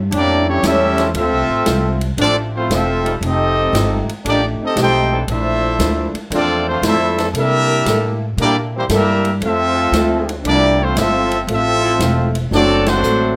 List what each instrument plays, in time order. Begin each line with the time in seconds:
0.11 upright bass F2, steel-string acoustic guitar A2 G3 C#4 E4, trumpet section A#3 E4 G4 D5, trombone section D4, ride
0.46 trombone section E3 G3 C#4, trumpet section A3 E4 G4 C#5
0.63 upright bass E2, steel-string acoustic guitar A2 G3 C#4 E4, trombone section G3 C#4 E4, trumpet section C#4 G4 A4 E5, snare, hi-hat pedal, ride
0.98 trombone section F3 D4 E4 C5, snare, ride
1.14 upright bass D2, steel-string acoustic guitar D3 F3 C4 E4, trombone section A3 C4 F4, trumpet section C4 F4 A4 E5, ride
1.32 upright bass C2
1.48 upright bass A1
1.66 upright bass C2, steel-string acoustic guitar D3 F3 C4 E4, snare, hi-hat pedal, ride
2.01 ride
2.17 upright bass A1, steel-string acoustic guitar D3 F3 C4 E4, trombone section F3 A3 D4, trumpet section C4 F4 A4 D5, ride
2.55 trombone section F3 A3 C4, trumpet section A3 E4 F4 C5
2.69 upright bass E1, steel-string acoustic guitar D3 F3 C4 E4, trombone section A3 C4 F4, snare, hi-hat pedal, ride
2.74 trumpet section C4 F4 A4 E5
3.02 trombone section G3 D#4 F4 A4, ride
3.21 upright bass F1, steel-string acoustic guitar F3 A3 D#4 G4, trombone section A3 C4 D#4, ride
3.26 trumpet section C4 G4 A4 D#5
3.72 upright bass G1, steel-string acoustic guitar F3 A3 D#4 G4, snare, hi-hat pedal, ride
4.08 muted upright bass stroke, ride
4.25 upright bass A1, steel-string acoustic guitar F3 A3 D#4 G4, trumpet section A#3 D#4 G4 D5, trombone section D4, ride
4.60 trombone section A3 C4 D#4, muted upright bass stroke
4.64 trumpet section C4 G4 A4 D#5
4.76 upright bass B1, steel-string acoustic guitar F3 A3 D#4 G4, trombone section C4 D#4 G4, snare, hi-hat pedal, ride
4.80 trumpet section D#4 A4 C5 G5
5.12 trombone section E3 C4 D4 A4
5.28 upright bass A#1, steel-string acoustic guitar A#2 E3 A3 D4, trombone section F3 A3 E4, ride
5.32 trumpet section D4 A4 C5 E5
5.79 upright bass D2, steel-string acoustic guitar A#2 E3 A3 D4, snare, hi-hat pedal, ride
6.14 muted upright bass stroke, ride
6.30 upright bass E2, steel-string acoustic guitar A#2 E3 A3 D4, trombone section F3 A3 D4, trumpet section C4 F4 A4 D5, ride
6.68 trombone section F3 A3 C4, trumpet section A3 D4 F4 C5
6.82 upright bass F2, steel-string acoustic guitar A#2 E3 A3 D4, trombone section F3 A3 E4, trumpet section A4 C5, snare, hi-hat pedal, ride
6.86 trumpet section D4 E5
7.18 trombone section E3 A#3 D4 A4, snare, ride
7.33 upright bass C3, steel-string acoustic guitar C3 A#3 E4 A4, trombone section G3 A#3 E4, ride
7.38 trumpet section D4 G4 A#4 E5
7.86 upright bass A2, steel-string acoustic guitar C3 A#3 E4 A4, snare, hi-hat pedal, ride
8.37 upright bass A#2, steel-string acoustic guitar C3 A#3 E4 A4, trombone section G3 A#3 D4, trumpet section A#3 E4 G4 D5, ride
8.75 trombone section E3 G3 C4, trumpet section A#3 E4 G4 C5
8.89 upright bass G2, steel-string acoustic guitar C3 A#3 E4 A4, trombone section G3 A#3 E4, snare, hi-hat pedal, ride
8.94 trumpet section D4 G4 A#4 E5
9.25 ride
9.40 upright bass F2, steel-string acoustic guitar F3 A3 C4 E4, trombone section A3 C4 F4, ride
9.46 trumpet section C4 F4 A4 E5
9.74 trombone section F3 C4 F4 A4
9.92 upright bass D2, steel-string acoustic guitar F3 A3 C4 E4, snare, hi-hat pedal, ride
10.29 ride
10.44 upright bass C2, steel-string acoustic guitar F3 A3 C4 E4, trumpet section A#3 E4 G4 D5, trombone section D4, ride
10.80 trombone section E3 A3 C4, trumpet section A3 E4 F4 C5
10.95 upright bass G1, steel-string acoustic guitar F3 A3 C4 E4, trombone section A3 C4 F4, trumpet section E5, snare, hi-hat pedal, ride
10.99 trumpet section C4 F4 A4
11.31 ride
11.47 upright bass A1, steel-string acoustic guitar F3 A3 C4 E4, trombone section A3 C4 F4, ride
11.52 trumpet section C4 F4 A4 E5
11.81 trombone section F3 C4 E4 A4
11.99 upright bass E1, steel-string acoustic guitar F3 A3 C4 E4, snare, hi-hat pedal, ride
12.35 ride
12.51 upright bass F#1, steel-string acoustic guitar D3 A3 C4 F#4, trombone section F#3 A3 D4, trumpet section C4 F#4 A4 D5, snare
12.86 trombone section F#3 A3 C4, trumpet section A3 D4 F#4 C5, snare, ride
13.02 upright bass A1, steel-string acoustic guitar D3 A3 C4 F#4, hi-hat pedal